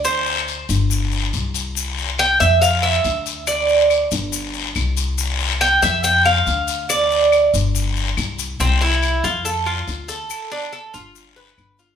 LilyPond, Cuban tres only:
\new Staff \with { instrumentName = "Cuban tres" } { \time 4/4 \key g \mixolydian \tempo 4 = 140 c''4. r2 r8 | r4 g''8 e''8 f''8 e''4. | d''4. r2 r8 | r4 g''8 e''8 g''8 f''4. |
d''4. r2 r8 | c'8 e'4 f'8 a'8 f'4 a'8~ | a'8 d'8 a'8 f'4 b'4 f'8 | }